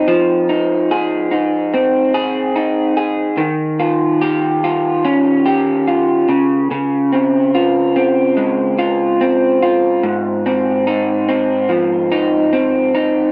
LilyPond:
\new Staff \with { instrumentName = "Clean electric guitar" } { \time 4/4 \key aes \major \tempo 4 = 72 f8 ees'8 aes'8 ees'8 c'8 aes'8 ees'8 aes'8 | ees8 f'8 g'8 f'8 des'8 g'8 f'8 des8 | des8 c'8 f'8 c'8 aes8 f'8 c'8 f'8 | aes,8 c'8 ees'8 c'8 f8 ees'8 c'8 ees'8 | }